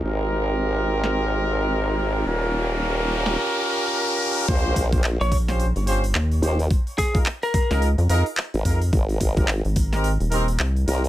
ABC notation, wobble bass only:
X:1
M:4/4
L:1/16
Q:"Swing 16ths" 1/4=108
K:Bbdor
V:1 name="Wobble bass" clef=bass
A,,,16 | E,,,8 z8 | B,,,2 B,,,3 z8 z E,,2 | z12 z A,,, z2 |
A,,,2 A,,,3 z8 z C,,2 |]